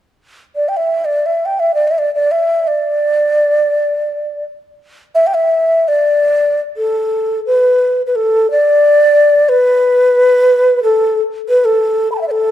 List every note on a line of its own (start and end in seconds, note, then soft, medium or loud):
0.56 0.70 D5 medium
0.69 0.78 G5 soft
0.77 1.06 E5 medium
1.05 1.27 D5 medium
1.26 1.47 E5 medium
1.46 1.61 G5 medium
1.60 1.72 E5 medium
1.74 1.89 D5 medium
1.87 2.00 E5 medium
1.99 2.14 D5 medium
2.15 2.33 D5 medium
2.31 2.69 E5 medium
2.67 4.44 D5 medium
5.15 5.28 E5 medium
5.27 5.36 G5 medium
5.35 5.90 E5 medium
5.88 6.61 D5 medium
6.77 7.40 A4 medium
7.46 8.02 B4 medium
8.07 8.17 B4 medium
8.16 8.48 A4 medium
8.51 9.50 D5 medium
9.49 10.83 B4 medium
10.83 11.20 A4 medium
11.49 11.66 B4 medium
11.65 12.11 A4 medium
12.12 12.17 A5 soft
12.12 12.14 B5 soft
12.18 12.27 E5 soft
12.18 12.20 G5 soft
12.28 12.51 A4 medium
12.28 12.30 D5 soft